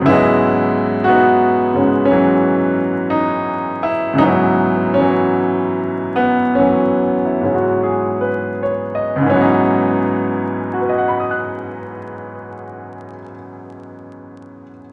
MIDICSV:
0, 0, Header, 1, 2, 480
1, 0, Start_track
1, 0, Key_signature, 4, "minor"
1, 0, Tempo, 1008403
1, 22, Time_signature, 4, 2, 24, 8
1, 982, Tempo, 1045296
1, 1462, Tempo, 1086957
1, 1942, Tempo, 1142857
1, 2422, Tempo, 1212121
1, 2902, Tempo, 1298701
1, 3382, Tempo, 1398601
1, 3862, Tempo, 1435407
1, 5761, End_track
2, 0, Start_track
2, 0, Title_t, "Grand piano"
2, 0, Program_c, 0, 0
2, 0, Control_c, 0, 64, 127
2, 7, Note_on_c, 0, 37, 53
2, 20, Note_on_c, 0, 44, 49
2, 27, Note_on_c, 0, 64, 90
2, 29, Control_c, 0, 64, 0
2, 29, Note_on_c, 0, 52, 50
2, 40, Note_on_c, 0, 54, 45
2, 48, Note_on_c, 0, 56, 64
2, 50, Note_on_c, 0, 59, 62
2, 63, Note_on_c, 0, 75, 59
2, 105, Control_c, 0, 64, 127
2, 496, Note_on_c, 0, 66, 81
2, 508, Note_off_c, 0, 59, 0
2, 515, Note_off_c, 0, 64, 0
2, 515, Note_on_c, 0, 59, 59
2, 518, Note_on_c, 0, 63, 58
2, 819, Note_off_c, 0, 44, 0
2, 825, Note_off_c, 0, 56, 0
2, 826, Note_on_c, 0, 44, 39
2, 827, Note_on_c, 0, 49, 35
2, 832, Note_on_c, 0, 56, 38
2, 836, Note_on_c, 0, 61, 45
2, 970, Note_off_c, 0, 61, 0
2, 977, Note_on_c, 0, 61, 74
2, 995, Note_off_c, 0, 66, 0
2, 997, Note_off_c, 0, 52, 0
2, 1000, Note_off_c, 0, 54, 0
2, 1003, Note_on_c, 0, 52, 53
2, 1007, Note_on_c, 0, 54, 57
2, 1452, Note_off_c, 0, 59, 0
2, 1452, Note_off_c, 0, 63, 0
2, 1459, Note_on_c, 0, 63, 74
2, 1474, Note_off_c, 0, 61, 0
2, 1781, Note_on_c, 0, 64, 72
2, 1793, Note_off_c, 0, 63, 0
2, 1907, Note_off_c, 0, 37, 0
2, 1914, Note_on_c, 0, 37, 50
2, 1916, Note_off_c, 0, 44, 0
2, 1923, Note_on_c, 0, 44, 45
2, 1927, Note_off_c, 0, 52, 0
2, 1929, Note_off_c, 0, 64, 0
2, 1932, Note_off_c, 0, 54, 0
2, 1933, Note_on_c, 0, 52, 45
2, 1937, Note_on_c, 0, 63, 87
2, 1938, Note_on_c, 0, 54, 45
2, 1944, Note_off_c, 0, 49, 0
2, 1946, Note_off_c, 0, 56, 0
2, 1949, Note_on_c, 0, 59, 44
2, 1954, Note_off_c, 0, 63, 0
2, 1958, Note_off_c, 0, 54, 0
2, 1959, Note_off_c, 0, 59, 0
2, 1960, Note_off_c, 0, 75, 0
2, 1960, Note_on_c, 0, 63, 58
2, 1964, Note_on_c, 0, 54, 59
2, 1965, Note_on_c, 0, 59, 57
2, 2255, Note_on_c, 0, 61, 76
2, 2275, Note_off_c, 0, 54, 0
2, 2278, Note_off_c, 0, 52, 0
2, 2281, Note_on_c, 0, 54, 53
2, 2284, Note_on_c, 0, 52, 51
2, 2740, Note_off_c, 0, 59, 0
2, 2746, Note_on_c, 0, 59, 70
2, 2753, Note_off_c, 0, 61, 0
2, 2902, Note_on_c, 0, 61, 66
2, 2908, Note_off_c, 0, 59, 0
2, 2911, Note_off_c, 0, 52, 0
2, 2915, Note_off_c, 0, 54, 0
2, 2916, Note_on_c, 0, 52, 43
2, 2920, Note_on_c, 0, 54, 45
2, 3162, Note_on_c, 0, 64, 34
2, 3214, Note_off_c, 0, 44, 0
2, 3219, Note_on_c, 0, 44, 33
2, 3225, Note_on_c, 0, 49, 32
2, 3226, Note_off_c, 0, 61, 0
2, 3228, Note_on_c, 0, 56, 33
2, 3232, Note_on_c, 0, 61, 38
2, 3270, Note_on_c, 0, 66, 40
2, 3301, Note_off_c, 0, 64, 0
2, 3375, Note_on_c, 0, 68, 40
2, 3435, Note_off_c, 0, 66, 0
2, 3505, Note_on_c, 0, 71, 42
2, 3605, Note_off_c, 0, 68, 0
2, 3649, Note_on_c, 0, 73, 44
2, 3711, Note_off_c, 0, 71, 0
2, 3760, Note_on_c, 0, 75, 43
2, 3785, Note_off_c, 0, 73, 0
2, 3826, Note_off_c, 0, 37, 0
2, 3832, Note_on_c, 0, 37, 54
2, 3845, Note_off_c, 0, 44, 0
2, 3850, Note_on_c, 0, 44, 51
2, 3856, Note_off_c, 0, 52, 0
2, 3858, Note_off_c, 0, 54, 0
2, 3864, Note_off_c, 0, 49, 0
2, 3865, Note_off_c, 0, 56, 0
2, 3867, Note_off_c, 0, 61, 0
2, 3867, Note_on_c, 0, 52, 52
2, 3868, Control_c, 0, 64, 0
2, 3870, Note_off_c, 0, 63, 0
2, 3878, Note_on_c, 0, 61, 69
2, 3883, Note_on_c, 0, 54, 50
2, 3898, Note_on_c, 0, 59, 50
2, 3916, Note_on_c, 0, 63, 63
2, 3920, Control_c, 0, 64, 127
2, 3921, Note_off_c, 0, 75, 0
2, 4359, Note_on_c, 0, 66, 38
2, 4384, Note_on_c, 0, 71, 34
2, 4412, Note_on_c, 0, 75, 33
2, 4441, Note_on_c, 0, 78, 33
2, 4475, Note_on_c, 0, 83, 32
2, 4514, Note_on_c, 0, 87, 31
2, 4551, Note_on_c, 0, 90, 30
2, 5147, Note_off_c, 0, 37, 0
2, 5165, Note_off_c, 0, 44, 0
2, 5179, Note_off_c, 0, 61, 0
2, 5181, Note_off_c, 0, 52, 0
2, 5197, Note_off_c, 0, 54, 0
2, 5212, Note_off_c, 0, 59, 0
2, 5231, Note_off_c, 0, 63, 0
2, 5660, Note_off_c, 0, 66, 0
2, 5685, Note_off_c, 0, 71, 0
2, 5714, Note_off_c, 0, 75, 0
2, 5743, Note_off_c, 0, 78, 0
2, 5761, Note_off_c, 0, 83, 0
2, 5761, Note_off_c, 0, 87, 0
2, 5761, Note_off_c, 0, 90, 0
2, 5761, End_track
0, 0, End_of_file